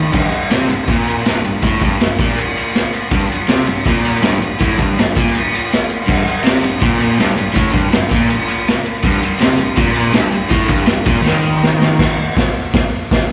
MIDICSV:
0, 0, Header, 1, 4, 480
1, 0, Start_track
1, 0, Key_signature, -2, "minor"
1, 0, Tempo, 370828
1, 175, Time_signature, 4, 2, 24, 8
1, 17244, End_track
2, 0, Start_track
2, 0, Title_t, "Overdriven electric guitar"
2, 0, Program_c, 0, 29
2, 0, Note_on_c, 0, 51, 120
2, 149, Note_on_c, 0, 43, 113
2, 167, Note_off_c, 0, 51, 0
2, 391, Note_off_c, 0, 43, 0
2, 662, Note_on_c, 0, 48, 114
2, 879, Note_on_c, 0, 43, 64
2, 894, Note_off_c, 0, 48, 0
2, 1082, Note_off_c, 0, 43, 0
2, 1146, Note_on_c, 0, 46, 101
2, 1618, Note_off_c, 0, 46, 0
2, 1641, Note_on_c, 0, 43, 99
2, 1857, Note_off_c, 0, 43, 0
2, 1872, Note_on_c, 0, 43, 70
2, 2060, Note_off_c, 0, 43, 0
2, 2120, Note_on_c, 0, 45, 110
2, 2346, Note_off_c, 0, 45, 0
2, 2361, Note_on_c, 0, 43, 107
2, 2578, Note_off_c, 0, 43, 0
2, 2594, Note_on_c, 0, 43, 76
2, 2783, Note_off_c, 0, 43, 0
2, 2847, Note_on_c, 0, 46, 99
2, 3070, Note_off_c, 0, 46, 0
2, 4053, Note_on_c, 0, 43, 116
2, 4263, Note_off_c, 0, 43, 0
2, 4510, Note_on_c, 0, 48, 100
2, 4744, Note_off_c, 0, 48, 0
2, 4756, Note_on_c, 0, 43, 71
2, 4946, Note_off_c, 0, 43, 0
2, 5002, Note_on_c, 0, 46, 114
2, 5467, Note_on_c, 0, 43, 119
2, 5470, Note_off_c, 0, 46, 0
2, 5695, Note_off_c, 0, 43, 0
2, 5711, Note_on_c, 0, 43, 82
2, 5904, Note_off_c, 0, 43, 0
2, 5953, Note_on_c, 0, 45, 113
2, 6177, Note_on_c, 0, 43, 91
2, 6186, Note_off_c, 0, 45, 0
2, 6418, Note_off_c, 0, 43, 0
2, 6458, Note_on_c, 0, 43, 78
2, 6637, Note_off_c, 0, 43, 0
2, 6682, Note_on_c, 0, 46, 93
2, 6910, Note_off_c, 0, 46, 0
2, 7863, Note_on_c, 0, 43, 105
2, 8083, Note_off_c, 0, 43, 0
2, 8340, Note_on_c, 0, 48, 107
2, 8578, Note_off_c, 0, 48, 0
2, 8600, Note_on_c, 0, 43, 72
2, 8787, Note_off_c, 0, 43, 0
2, 8824, Note_on_c, 0, 46, 117
2, 9298, Note_off_c, 0, 46, 0
2, 9306, Note_on_c, 0, 43, 114
2, 9526, Note_off_c, 0, 43, 0
2, 9541, Note_on_c, 0, 43, 74
2, 9736, Note_off_c, 0, 43, 0
2, 9758, Note_on_c, 0, 45, 111
2, 10003, Note_on_c, 0, 43, 103
2, 10005, Note_off_c, 0, 45, 0
2, 10226, Note_off_c, 0, 43, 0
2, 10242, Note_on_c, 0, 43, 82
2, 10445, Note_off_c, 0, 43, 0
2, 10505, Note_on_c, 0, 46, 97
2, 10737, Note_off_c, 0, 46, 0
2, 11718, Note_on_c, 0, 43, 106
2, 11918, Note_off_c, 0, 43, 0
2, 12167, Note_on_c, 0, 48, 104
2, 12395, Note_on_c, 0, 43, 69
2, 12406, Note_off_c, 0, 48, 0
2, 12599, Note_off_c, 0, 43, 0
2, 12645, Note_on_c, 0, 46, 114
2, 13114, Note_on_c, 0, 43, 114
2, 13124, Note_off_c, 0, 46, 0
2, 13348, Note_off_c, 0, 43, 0
2, 13363, Note_on_c, 0, 43, 82
2, 13562, Note_off_c, 0, 43, 0
2, 13588, Note_on_c, 0, 45, 114
2, 13835, Note_off_c, 0, 45, 0
2, 13835, Note_on_c, 0, 43, 104
2, 14071, Note_off_c, 0, 43, 0
2, 14086, Note_on_c, 0, 43, 76
2, 14283, Note_off_c, 0, 43, 0
2, 14319, Note_on_c, 0, 46, 109
2, 14531, Note_off_c, 0, 46, 0
2, 14536, Note_on_c, 0, 51, 118
2, 15507, Note_off_c, 0, 51, 0
2, 17244, End_track
3, 0, Start_track
3, 0, Title_t, "Muted overdriven electric guitar strokes"
3, 407, Note_on_c, 9, 29, 52
3, 536, Note_off_c, 9, 29, 0
3, 4278, Note_on_c, 9, 29, 65
3, 4408, Note_off_c, 9, 29, 0
3, 8099, Note_on_c, 9, 29, 57
3, 8228, Note_off_c, 9, 29, 0
3, 11934, Note_on_c, 9, 29, 65
3, 12063, Note_off_c, 9, 29, 0
3, 17244, End_track
4, 0, Start_track
4, 0, Title_t, "Drums"
4, 165, Note_on_c, 9, 49, 120
4, 176, Note_on_c, 9, 36, 110
4, 295, Note_off_c, 9, 49, 0
4, 305, Note_off_c, 9, 36, 0
4, 412, Note_on_c, 9, 51, 66
4, 542, Note_off_c, 9, 51, 0
4, 653, Note_on_c, 9, 51, 99
4, 663, Note_on_c, 9, 38, 125
4, 782, Note_off_c, 9, 51, 0
4, 792, Note_off_c, 9, 38, 0
4, 905, Note_on_c, 9, 51, 74
4, 1035, Note_off_c, 9, 51, 0
4, 1130, Note_on_c, 9, 51, 101
4, 1137, Note_on_c, 9, 36, 110
4, 1259, Note_off_c, 9, 51, 0
4, 1266, Note_off_c, 9, 36, 0
4, 1384, Note_on_c, 9, 51, 70
4, 1513, Note_off_c, 9, 51, 0
4, 1622, Note_on_c, 9, 51, 83
4, 1632, Note_on_c, 9, 38, 115
4, 1751, Note_off_c, 9, 51, 0
4, 1762, Note_off_c, 9, 38, 0
4, 1870, Note_on_c, 9, 51, 77
4, 1999, Note_off_c, 9, 51, 0
4, 2109, Note_on_c, 9, 36, 107
4, 2111, Note_on_c, 9, 51, 98
4, 2238, Note_off_c, 9, 36, 0
4, 2241, Note_off_c, 9, 51, 0
4, 2350, Note_on_c, 9, 36, 101
4, 2354, Note_on_c, 9, 51, 74
4, 2480, Note_off_c, 9, 36, 0
4, 2483, Note_off_c, 9, 51, 0
4, 2594, Note_on_c, 9, 51, 107
4, 2604, Note_on_c, 9, 38, 127
4, 2723, Note_off_c, 9, 51, 0
4, 2734, Note_off_c, 9, 38, 0
4, 2836, Note_on_c, 9, 36, 99
4, 2852, Note_on_c, 9, 51, 67
4, 2966, Note_off_c, 9, 36, 0
4, 2981, Note_off_c, 9, 51, 0
4, 3078, Note_on_c, 9, 51, 113
4, 3208, Note_off_c, 9, 51, 0
4, 3327, Note_on_c, 9, 51, 78
4, 3456, Note_off_c, 9, 51, 0
4, 3556, Note_on_c, 9, 51, 101
4, 3566, Note_on_c, 9, 38, 106
4, 3685, Note_off_c, 9, 51, 0
4, 3696, Note_off_c, 9, 38, 0
4, 3796, Note_on_c, 9, 51, 81
4, 3925, Note_off_c, 9, 51, 0
4, 4025, Note_on_c, 9, 51, 110
4, 4031, Note_on_c, 9, 36, 108
4, 4154, Note_off_c, 9, 51, 0
4, 4160, Note_off_c, 9, 36, 0
4, 4290, Note_on_c, 9, 51, 70
4, 4419, Note_off_c, 9, 51, 0
4, 4509, Note_on_c, 9, 51, 123
4, 4519, Note_on_c, 9, 38, 122
4, 4638, Note_off_c, 9, 51, 0
4, 4649, Note_off_c, 9, 38, 0
4, 4747, Note_on_c, 9, 51, 72
4, 4877, Note_off_c, 9, 51, 0
4, 4995, Note_on_c, 9, 36, 116
4, 4999, Note_on_c, 9, 51, 105
4, 5124, Note_off_c, 9, 36, 0
4, 5129, Note_off_c, 9, 51, 0
4, 5238, Note_on_c, 9, 51, 72
4, 5368, Note_off_c, 9, 51, 0
4, 5468, Note_on_c, 9, 51, 94
4, 5478, Note_on_c, 9, 38, 115
4, 5597, Note_off_c, 9, 51, 0
4, 5607, Note_off_c, 9, 38, 0
4, 5718, Note_on_c, 9, 51, 71
4, 5848, Note_off_c, 9, 51, 0
4, 5963, Note_on_c, 9, 36, 111
4, 5963, Note_on_c, 9, 51, 100
4, 6092, Note_off_c, 9, 51, 0
4, 6093, Note_off_c, 9, 36, 0
4, 6200, Note_on_c, 9, 36, 100
4, 6205, Note_on_c, 9, 51, 71
4, 6330, Note_off_c, 9, 36, 0
4, 6334, Note_off_c, 9, 51, 0
4, 6453, Note_on_c, 9, 51, 101
4, 6464, Note_on_c, 9, 38, 124
4, 6583, Note_off_c, 9, 51, 0
4, 6593, Note_off_c, 9, 38, 0
4, 6686, Note_on_c, 9, 51, 67
4, 6687, Note_on_c, 9, 36, 97
4, 6815, Note_off_c, 9, 51, 0
4, 6816, Note_off_c, 9, 36, 0
4, 6921, Note_on_c, 9, 51, 111
4, 7051, Note_off_c, 9, 51, 0
4, 7180, Note_on_c, 9, 51, 78
4, 7310, Note_off_c, 9, 51, 0
4, 7411, Note_on_c, 9, 51, 100
4, 7421, Note_on_c, 9, 38, 102
4, 7540, Note_off_c, 9, 51, 0
4, 7550, Note_off_c, 9, 38, 0
4, 7634, Note_on_c, 9, 51, 77
4, 7763, Note_off_c, 9, 51, 0
4, 7879, Note_on_c, 9, 36, 98
4, 7890, Note_on_c, 9, 49, 108
4, 8008, Note_off_c, 9, 36, 0
4, 8019, Note_off_c, 9, 49, 0
4, 8119, Note_on_c, 9, 51, 75
4, 8248, Note_off_c, 9, 51, 0
4, 8359, Note_on_c, 9, 51, 121
4, 8369, Note_on_c, 9, 38, 116
4, 8488, Note_off_c, 9, 51, 0
4, 8499, Note_off_c, 9, 38, 0
4, 8593, Note_on_c, 9, 51, 82
4, 8723, Note_off_c, 9, 51, 0
4, 8827, Note_on_c, 9, 36, 114
4, 8829, Note_on_c, 9, 51, 104
4, 8956, Note_off_c, 9, 36, 0
4, 8958, Note_off_c, 9, 51, 0
4, 9063, Note_on_c, 9, 51, 77
4, 9193, Note_off_c, 9, 51, 0
4, 9317, Note_on_c, 9, 51, 100
4, 9327, Note_on_c, 9, 38, 103
4, 9446, Note_off_c, 9, 51, 0
4, 9457, Note_off_c, 9, 38, 0
4, 9547, Note_on_c, 9, 51, 82
4, 9677, Note_off_c, 9, 51, 0
4, 9785, Note_on_c, 9, 51, 90
4, 9787, Note_on_c, 9, 36, 101
4, 9914, Note_off_c, 9, 51, 0
4, 9916, Note_off_c, 9, 36, 0
4, 10011, Note_on_c, 9, 51, 65
4, 10021, Note_on_c, 9, 36, 99
4, 10140, Note_off_c, 9, 51, 0
4, 10150, Note_off_c, 9, 36, 0
4, 10255, Note_on_c, 9, 51, 106
4, 10265, Note_on_c, 9, 38, 127
4, 10384, Note_off_c, 9, 51, 0
4, 10394, Note_off_c, 9, 38, 0
4, 10502, Note_on_c, 9, 36, 110
4, 10502, Note_on_c, 9, 51, 75
4, 10631, Note_off_c, 9, 36, 0
4, 10632, Note_off_c, 9, 51, 0
4, 10742, Note_on_c, 9, 51, 94
4, 10871, Note_off_c, 9, 51, 0
4, 10980, Note_on_c, 9, 51, 79
4, 11110, Note_off_c, 9, 51, 0
4, 11230, Note_on_c, 9, 51, 88
4, 11241, Note_on_c, 9, 38, 114
4, 11360, Note_off_c, 9, 51, 0
4, 11370, Note_off_c, 9, 38, 0
4, 11463, Note_on_c, 9, 51, 74
4, 11593, Note_off_c, 9, 51, 0
4, 11681, Note_on_c, 9, 51, 118
4, 11696, Note_on_c, 9, 36, 118
4, 11810, Note_off_c, 9, 51, 0
4, 11826, Note_off_c, 9, 36, 0
4, 11943, Note_on_c, 9, 51, 80
4, 12072, Note_off_c, 9, 51, 0
4, 12184, Note_on_c, 9, 51, 107
4, 12194, Note_on_c, 9, 38, 120
4, 12313, Note_off_c, 9, 51, 0
4, 12323, Note_off_c, 9, 38, 0
4, 12405, Note_on_c, 9, 51, 83
4, 12534, Note_off_c, 9, 51, 0
4, 12641, Note_on_c, 9, 51, 107
4, 12651, Note_on_c, 9, 36, 110
4, 12771, Note_off_c, 9, 51, 0
4, 12781, Note_off_c, 9, 36, 0
4, 12884, Note_on_c, 9, 51, 85
4, 13014, Note_off_c, 9, 51, 0
4, 13117, Note_on_c, 9, 51, 91
4, 13127, Note_on_c, 9, 38, 103
4, 13247, Note_off_c, 9, 51, 0
4, 13257, Note_off_c, 9, 38, 0
4, 13361, Note_on_c, 9, 51, 72
4, 13490, Note_off_c, 9, 51, 0
4, 13594, Note_on_c, 9, 51, 99
4, 13604, Note_on_c, 9, 36, 112
4, 13723, Note_off_c, 9, 51, 0
4, 13733, Note_off_c, 9, 36, 0
4, 13826, Note_on_c, 9, 51, 76
4, 13842, Note_on_c, 9, 36, 91
4, 13956, Note_off_c, 9, 51, 0
4, 13971, Note_off_c, 9, 36, 0
4, 14059, Note_on_c, 9, 51, 110
4, 14069, Note_on_c, 9, 38, 119
4, 14188, Note_off_c, 9, 51, 0
4, 14198, Note_off_c, 9, 38, 0
4, 14309, Note_on_c, 9, 51, 70
4, 14322, Note_on_c, 9, 36, 114
4, 14438, Note_off_c, 9, 51, 0
4, 14452, Note_off_c, 9, 36, 0
4, 14574, Note_on_c, 9, 38, 66
4, 14703, Note_off_c, 9, 38, 0
4, 15060, Note_on_c, 9, 38, 100
4, 15189, Note_off_c, 9, 38, 0
4, 15297, Note_on_c, 9, 38, 95
4, 15427, Note_off_c, 9, 38, 0
4, 15522, Note_on_c, 9, 49, 123
4, 15524, Note_on_c, 9, 36, 116
4, 15532, Note_on_c, 9, 38, 119
4, 15651, Note_off_c, 9, 49, 0
4, 15654, Note_off_c, 9, 36, 0
4, 15661, Note_off_c, 9, 38, 0
4, 16008, Note_on_c, 9, 36, 123
4, 16012, Note_on_c, 9, 46, 80
4, 16022, Note_on_c, 9, 38, 122
4, 16138, Note_off_c, 9, 36, 0
4, 16141, Note_off_c, 9, 46, 0
4, 16152, Note_off_c, 9, 38, 0
4, 16483, Note_on_c, 9, 46, 72
4, 16488, Note_on_c, 9, 36, 119
4, 16494, Note_on_c, 9, 38, 112
4, 16613, Note_off_c, 9, 46, 0
4, 16618, Note_off_c, 9, 36, 0
4, 16623, Note_off_c, 9, 38, 0
4, 16974, Note_on_c, 9, 36, 116
4, 16977, Note_on_c, 9, 46, 69
4, 16988, Note_on_c, 9, 38, 108
4, 17104, Note_off_c, 9, 36, 0
4, 17107, Note_off_c, 9, 46, 0
4, 17117, Note_off_c, 9, 38, 0
4, 17244, End_track
0, 0, End_of_file